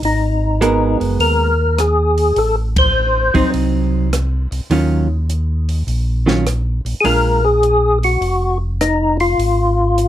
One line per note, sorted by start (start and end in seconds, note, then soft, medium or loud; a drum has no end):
0.02 0.97 G#1 medium
0.02 0.98 D#4 medium
0.02 open hi-hat soft
0.61 1.51 G#3 medium
0.61 1.51 B3 medium
0.61 1.52 F#4 medium
0.61 1.52 A#4 medium
0.61 closed hi-hat soft
1.00 1.18 F#1 medium
1.00 open hi-hat soft
1.19 2.33 D#2 medium
1.19 1.81 A#4 medium
1.19 open hi-hat soft
1.78 2.39 G#4 medium
1.78 cross-stick medium
1.78 closed hi-hat soft
2.18 open hi-hat soft
2.36 3.30 A1 medium
2.36 2.56 A4 medium
2.36 open hi-hat soft
2.76 3.51 C5 loud
2.76 kick medium
2.76 ride medium
3.34 3.44 A1 soft
3.34 4.08 F#3 medium
3.34 4.09 C4 medium
3.34 4.09 D#4 medium
3.34 kick soft
3.34 open hi-hat soft
3.53 4.48 C2 medium
3.53 open hi-hat soft
4.13 cross-stick medium
4.13 closed hi-hat soft
4.51 4.61 C2 soft
4.51 open hi-hat soft
4.70 5.83 D#2 medium
4.70 5.06 D#3 medium
4.70 5.07 F#3 medium
4.70 5.07 C#4 soft
4.70 5.07 F4 medium
4.70 open hi-hat soft
5.30 closed hi-hat soft
5.69 open hi-hat soft
5.87 6.81 A#1 medium
5.87 open hi-hat soft
6.26 6.44 D#3 soft
6.26 6.44 F#3 medium
6.26 6.44 C#4 medium
6.26 6.45 F4 medium
6.26 snare soft
6.46 cross-stick medium
6.46 closed hi-hat soft
6.85 6.95 A#1 soft
6.85 open hi-hat soft
7.01 8.17 A#1 medium
7.01 7.40 G#3 soft
7.01 7.05 G#4 medium
7.05 7.40 D4 soft
7.05 7.41 F4 soft
7.05 7.46 A#4 medium
7.05 open hi-hat soft
7.44 7.99 G#4 loud
7.63 closed hi-hat soft
8.03 8.58 F#4 medium
8.03 open hi-hat soft
8.21 9.34 F1 medium
8.21 open hi-hat soft
8.81 9.17 D#4 medium
8.81 cross-stick medium
8.81 closed hi-hat soft
9.20 10.08 F4 medium
9.20 open hi-hat soft
9.38 10.08 G#1 medium
9.38 open hi-hat soft
9.98 closed hi-hat soft